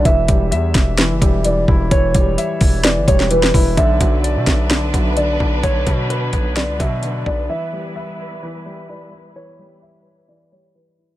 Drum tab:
HH |x-x-x-x-x-x-x---|x-x-x-o-x-x-x-o-|x-x-x-x-x-x-x---|x-x-x-x-x-x-x---|
SD |------o-o-------|--------o--o-o--|------o-o-------|--------o-------|
BD |o-o---o---o---o-|o-o---o---o---o-|o-o---o---o---o-|o-o---o---o---o-|

HH |----------------|----------------|
SD |----------------|----------------|
BD |----------------|----------------|